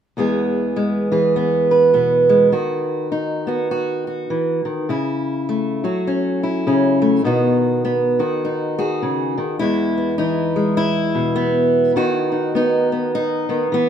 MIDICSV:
0, 0, Header, 1, 2, 480
1, 0, Start_track
1, 0, Key_signature, 4, "major"
1, 0, Tempo, 589391
1, 137, Time_signature, 4, 2, 24, 8
1, 11313, End_track
2, 0, Start_track
2, 0, Title_t, "Steel-string acoustic guitar"
2, 0, Program_c, 0, 25
2, 137, Note_on_c, 0, 40, 52
2, 144, Note_on_c, 0, 52, 49
2, 151, Note_on_c, 0, 56, 41
2, 157, Note_on_c, 0, 59, 46
2, 161, Note_on_c, 0, 68, 49
2, 613, Note_off_c, 0, 56, 0
2, 622, Note_on_c, 0, 56, 54
2, 899, Note_off_c, 0, 52, 0
2, 904, Note_off_c, 0, 68, 0
2, 909, Note_on_c, 0, 52, 54
2, 914, Note_on_c, 0, 68, 51
2, 1104, Note_off_c, 0, 59, 0
2, 1108, Note_on_c, 0, 59, 52
2, 1390, Note_off_c, 0, 68, 0
2, 1393, Note_on_c, 0, 71, 46
2, 1570, Note_off_c, 0, 59, 0
2, 1575, Note_on_c, 0, 47, 48
2, 1580, Note_on_c, 0, 59, 49
2, 1858, Note_off_c, 0, 56, 0
2, 1868, Note_on_c, 0, 56, 51
2, 2035, Note_off_c, 0, 47, 0
2, 2036, Note_off_c, 0, 56, 0
2, 2037, Note_off_c, 0, 52, 0
2, 2039, Note_off_c, 0, 71, 0
2, 2055, Note_on_c, 0, 51, 56
2, 2059, Note_on_c, 0, 66, 50
2, 2060, Note_off_c, 0, 40, 0
2, 2535, Note_off_c, 0, 59, 0
2, 2538, Note_on_c, 0, 63, 56
2, 2825, Note_on_c, 0, 59, 55
2, 2831, Note_off_c, 0, 66, 0
2, 2835, Note_on_c, 0, 66, 49
2, 3019, Note_off_c, 0, 66, 0
2, 3022, Note_on_c, 0, 66, 61
2, 3313, Note_off_c, 0, 66, 0
2, 3316, Note_on_c, 0, 66, 48
2, 3498, Note_off_c, 0, 51, 0
2, 3503, Note_on_c, 0, 52, 54
2, 3785, Note_off_c, 0, 52, 0
2, 3788, Note_on_c, 0, 51, 52
2, 3956, Note_off_c, 0, 59, 0
2, 3957, Note_off_c, 0, 63, 0
2, 3980, Note_off_c, 0, 51, 0
2, 3983, Note_on_c, 0, 49, 57
2, 3987, Note_off_c, 0, 66, 0
2, 3990, Note_on_c, 0, 64, 51
2, 4470, Note_on_c, 0, 57, 52
2, 4752, Note_off_c, 0, 49, 0
2, 4756, Note_off_c, 0, 64, 0
2, 4756, Note_on_c, 0, 54, 53
2, 4762, Note_on_c, 0, 66, 50
2, 4947, Note_on_c, 0, 61, 48
2, 5237, Note_off_c, 0, 66, 0
2, 5240, Note_on_c, 0, 64, 46
2, 5424, Note_off_c, 0, 61, 0
2, 5430, Note_on_c, 0, 49, 60
2, 5436, Note_on_c, 0, 61, 55
2, 5705, Note_off_c, 0, 57, 0
2, 5715, Note_on_c, 0, 57, 52
2, 5881, Note_off_c, 0, 54, 0
2, 5881, Note_off_c, 0, 57, 0
2, 5883, Note_off_c, 0, 49, 0
2, 5886, Note_off_c, 0, 61, 0
2, 5899, Note_on_c, 0, 47, 54
2, 5905, Note_on_c, 0, 51, 45
2, 5906, Note_off_c, 0, 64, 0
2, 5912, Note_on_c, 0, 59, 42
2, 5916, Note_on_c, 0, 63, 46
2, 5919, Note_on_c, 0, 66, 48
2, 6381, Note_off_c, 0, 59, 0
2, 6390, Note_on_c, 0, 59, 53
2, 6663, Note_off_c, 0, 51, 0
2, 6666, Note_off_c, 0, 66, 0
2, 6670, Note_off_c, 0, 47, 0
2, 6673, Note_on_c, 0, 51, 58
2, 6676, Note_on_c, 0, 66, 48
2, 6869, Note_off_c, 0, 63, 0
2, 6879, Note_on_c, 0, 63, 50
2, 7146, Note_off_c, 0, 66, 0
2, 7155, Note_on_c, 0, 66, 70
2, 7159, Note_on_c, 0, 68, 43
2, 7350, Note_on_c, 0, 49, 51
2, 7626, Note_off_c, 0, 51, 0
2, 7635, Note_off_c, 0, 49, 0
2, 7636, Note_on_c, 0, 51, 60
2, 7802, Note_off_c, 0, 68, 0
2, 7803, Note_off_c, 0, 59, 0
2, 7808, Note_off_c, 0, 63, 0
2, 7810, Note_off_c, 0, 66, 0
2, 7813, Note_on_c, 0, 64, 75
2, 7821, Note_on_c, 0, 40, 56
2, 7824, Note_off_c, 0, 51, 0
2, 7828, Note_on_c, 0, 52, 36
2, 7832, Note_on_c, 0, 56, 40
2, 7840, Note_on_c, 0, 59, 38
2, 8121, Note_off_c, 0, 59, 0
2, 8124, Note_on_c, 0, 59, 38
2, 8287, Note_off_c, 0, 59, 0
2, 8291, Note_on_c, 0, 63, 61
2, 8293, Note_off_c, 0, 52, 0
2, 8302, Note_on_c, 0, 52, 54
2, 8590, Note_off_c, 0, 56, 0
2, 8600, Note_on_c, 0, 56, 44
2, 8762, Note_off_c, 0, 64, 0
2, 8771, Note_on_c, 0, 64, 86
2, 9078, Note_on_c, 0, 47, 55
2, 9245, Note_off_c, 0, 63, 0
2, 9248, Note_on_c, 0, 59, 75
2, 9719, Note_off_c, 0, 52, 0
2, 9722, Note_off_c, 0, 47, 0
2, 9723, Note_off_c, 0, 56, 0
2, 9735, Note_off_c, 0, 59, 0
2, 9736, Note_off_c, 0, 64, 0
2, 9738, Note_on_c, 0, 51, 60
2, 9741, Note_off_c, 0, 40, 0
2, 9744, Note_on_c, 0, 59, 39
2, 9746, Note_on_c, 0, 66, 71
2, 9749, Note_on_c, 0, 63, 41
2, 10022, Note_off_c, 0, 63, 0
2, 10032, Note_on_c, 0, 63, 40
2, 10210, Note_off_c, 0, 59, 0
2, 10220, Note_on_c, 0, 59, 58
2, 10222, Note_off_c, 0, 63, 0
2, 10231, Note_on_c, 0, 63, 73
2, 10510, Note_off_c, 0, 59, 0
2, 10523, Note_on_c, 0, 59, 41
2, 10699, Note_off_c, 0, 63, 0
2, 10702, Note_off_c, 0, 66, 0
2, 10709, Note_on_c, 0, 63, 87
2, 10976, Note_off_c, 0, 51, 0
2, 10981, Note_off_c, 0, 59, 0
2, 10986, Note_on_c, 0, 51, 55
2, 10991, Note_on_c, 0, 59, 42
2, 11170, Note_off_c, 0, 51, 0
2, 11173, Note_on_c, 0, 52, 62
2, 11179, Note_off_c, 0, 59, 0
2, 11185, Note_off_c, 0, 63, 0
2, 11189, Note_on_c, 0, 59, 78
2, 11313, Note_off_c, 0, 52, 0
2, 11313, Note_off_c, 0, 59, 0
2, 11313, End_track
0, 0, End_of_file